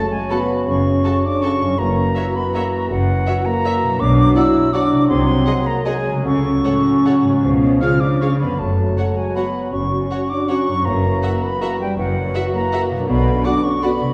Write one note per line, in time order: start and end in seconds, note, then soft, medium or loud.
0.00 1.60 F#2 soft
0.00 1.80 C#3 medium
0.00 1.65 F#3 soft
0.00 3.35 C#4 soft
0.00 1.74 F#4 soft
0.00 1.75 F#4 medium
0.00 2.88 C#5 soft
0.11 0.20 G#3 medium
0.11 0.32 G#5 medium
0.29 0.66 B3 medium
0.29 0.39 F#4 soft
0.29 0.37 A4 soft
0.29 0.39 A5 soft
0.29 0.67 B5 medium
0.66 0.98 F#1 medium
0.66 0.97 F#2 medium
0.66 1.24 C#4 medium
0.66 1.23 C#6 soft
1.03 1.13 F#4 soft
1.03 1.11 A4 soft
1.03 1.13 A5 soft
1.24 1.43 D4 medium
1.24 1.44 D6 medium
1.42 1.79 C#4 medium
1.42 1.51 F#4 soft
1.42 1.50 A4 soft
1.42 1.51 A5 soft
1.42 1.80 C#6 medium
1.61 3.93 F#2 medium
1.66 3.86 F#3 soft
1.70 3.98 E4 soft
1.75 2.10 F#2 medium
1.75 4.00 E3 medium
1.75 3.95 F#4 soft
1.75 3.96 F#4 medium
1.75 2.37 A#5 medium
1.79 2.10 F#1 medium
1.79 2.35 A#3 medium
2.16 2.25 F#4 soft
2.16 2.24 C#5 soft
2.16 2.24 E5 soft
2.36 2.55 B3 medium
2.36 2.56 B5 medium
2.54 2.90 A#3 medium
2.54 2.63 F#4 soft
2.54 2.63 C#5 soft
2.54 2.63 E5 soft
2.54 2.90 A#5 medium
2.90 3.21 F#1 medium
2.90 3.20 F#2 medium
2.90 3.46 F#3 medium
2.90 3.47 F#5 medium
3.26 3.35 F#4 medium
3.26 3.34 C#5 soft
3.26 3.35 E5 soft
3.45 3.99 A#3 medium
3.45 4.01 A#5 medium
3.64 3.72 F#4 soft
3.64 3.73 C#5 medium
3.64 3.74 E5 medium
3.83 5.02 B2 medium
3.87 7.37 F#3 soft
3.92 5.06 D4 soft
3.96 5.04 F#4 soft
3.96 4.36 D6 medium
4.00 4.30 B1 medium
4.00 4.30 B2 medium
4.00 4.70 F#3 medium
4.00 4.36 D4 medium
4.00 4.70 F#4 medium
4.34 4.72 E4 medium
4.34 4.44 F#4 medium
4.34 4.44 D5 medium
4.34 4.44 F#5 medium
4.34 4.75 E6 medium
4.73 5.09 F#3 medium
4.73 5.08 D4 medium
4.73 5.12 F#4 medium
4.73 4.82 F#4 medium
4.73 4.82 D5 medium
4.73 4.81 F#5 medium
4.73 5.08 D6 medium
4.92 6.18 C3 medium
4.97 6.20 G#3 soft
5.01 6.22 D#4 soft
5.05 5.40 C3 medium
5.05 5.65 C4 medium
5.05 6.20 F#4 soft
5.05 5.68 C6 medium
5.10 5.40 C2 medium
5.10 5.84 F#3 medium
5.10 5.85 G#4 medium
5.46 5.55 G#4 soft
5.46 5.55 D#5 soft
5.46 5.54 F#5 soft
5.63 5.84 A#3 medium
5.63 5.87 A#5 medium
5.84 6.24 F#3 medium
5.84 6.24 G#3 medium
5.84 6.28 G#4 soft
5.84 5.94 G#4 soft
5.84 5.93 D#5 soft
5.84 5.94 F#5 soft
5.84 6.25 G#5 medium
6.07 7.24 C#3 soft
6.12 7.38 A3 soft
6.16 7.33 C#4 soft
6.21 6.57 C#2 medium
6.21 6.57 C#3 medium
6.21 7.81 C#4 medium
6.21 7.42 F#4 soft
6.25 7.46 F#3 medium
6.25 7.27 A4 medium
6.25 7.50 C#6 medium
6.64 7.20 A2 medium
6.64 6.72 A4 soft
6.64 6.72 C#5 soft
6.64 6.72 F#5 soft
7.05 7.13 A4 soft
7.05 7.14 C#5 soft
7.05 7.13 F#5 soft
7.25 7.43 G#2 medium
7.25 8.52 C#3 soft
7.30 8.54 G#3 soft
7.35 8.50 C#4 soft
7.39 7.75 C#2 medium
7.39 8.59 F4 soft
7.43 7.81 B2 medium
7.43 8.41 F3 medium
7.43 8.39 G#4 soft
7.80 8.41 C#3 soft
7.80 8.01 F4 medium
7.80 7.90 G#4 soft
7.80 7.90 C#5 soft
7.80 7.90 F5 soft
7.80 8.02 F6 medium
8.00 8.21 D4 medium
8.00 8.23 D6 medium
8.21 8.31 C#4 medium
8.21 8.29 G#4 soft
8.21 8.29 C#5 soft
8.21 8.30 F5 soft
8.21 8.39 C#6 medium
8.40 10.67 F#2 soft
8.40 8.59 D3 soft
8.40 8.60 B3 medium
8.40 8.60 B5 medium
8.46 10.71 F#3 soft
8.51 12.41 C#4 soft
8.55 8.91 F#2 soft
8.55 10.80 F#4 soft
8.55 9.18 A5 soft
8.59 8.91 F#1 soft
8.59 9.69 F#3 soft
8.59 9.17 A3 medium
8.59 9.69 F#4 soft
8.97 9.06 F#4 soft
8.97 9.05 C#5 soft
8.97 9.06 F#5 soft
9.17 9.36 G#3 medium
9.17 9.37 G#5 medium
9.35 9.72 B3 medium
9.35 9.45 F#4 soft
9.35 9.45 C#5 soft
9.35 9.44 F#5 soft
9.35 9.71 B5 medium
9.72 10.03 F#1 soft
9.72 10.04 F#2 soft
9.72 10.48 F#3 soft
9.72 10.29 C#4 medium
9.72 10.47 F#4 soft
9.72 10.31 C#6 medium
10.11 10.19 F#4 soft
10.11 10.19 C#5 soft
10.11 10.19 F#5 soft
10.29 10.49 D4 medium
10.29 10.50 D6 medium
10.48 10.88 F#3 soft
10.48 10.85 C#4 medium
10.48 10.57 F#4 soft
10.48 10.85 F#4 soft
10.48 10.57 C#5 soft
10.48 10.57 F#5 soft
10.48 10.87 C#6 medium
10.68 13.01 F#2 soft
10.73 12.94 F#3 soft
10.77 13.06 E4 soft
10.81 13.03 F#4 soft
10.81 11.44 A#5 medium
10.86 11.16 F#1 medium
10.86 11.16 F#2 medium
10.86 11.61 E3 soft
10.86 11.42 A#3 medium
10.86 11.60 F#4 soft
11.23 11.31 F#4 soft
11.23 11.31 E5 soft
11.23 11.31 F#5 soft
11.42 11.61 B3 medium
11.42 11.63 B5 medium
11.61 11.98 E3 medium
11.61 11.80 A#3 medium
11.61 11.97 F#4 medium
11.61 11.69 F#4 medium
11.61 11.69 E5 medium
11.61 11.70 F#5 medium
11.61 11.80 A#5 medium
11.79 11.97 G3 medium
11.79 11.98 G5 medium
11.97 12.28 F#1 medium
11.97 12.28 F#2 medium
11.97 13.10 E3 medium
11.97 12.53 F#3 medium
11.97 13.06 F#4 medium
11.97 12.52 F#5 medium
12.34 12.42 F#4 medium
12.34 12.42 E5 medium
12.34 12.42 F#5 medium
12.54 13.07 A#3 medium
12.54 12.84 A#5 medium
12.72 12.81 F#4 medium
12.72 12.80 E5 medium
12.72 12.81 F#5 medium
12.90 14.11 B2 medium
12.95 14.14 F#3 soft
12.99 14.14 D4 soft
13.04 13.38 B2 medium
13.04 14.13 F#4 soft
13.08 13.39 B1 medium
13.08 13.45 D3 medium
13.08 13.45 B3 medium
13.08 13.44 F#4 medium
13.08 13.46 B5 medium
13.44 13.82 D3 medium
13.44 13.64 D4 medium
13.44 13.82 F#4 medium
13.44 13.53 F#4 soft
13.44 13.52 D5 medium
13.44 13.53 F#5 soft
13.44 13.65 D6 medium
13.64 13.73 C#4 medium
13.64 13.85 C#6 medium
13.82 14.14 D3 medium
13.82 14.14 B3 medium
13.82 14.14 F#4 soft
13.82 13.91 F#4 soft
13.82 13.90 D5 soft
13.82 13.91 F#5 soft
13.82 14.14 B5 medium
14.00 14.14 C3 soft
14.05 14.14 G#3 soft
14.09 14.14 D#4 soft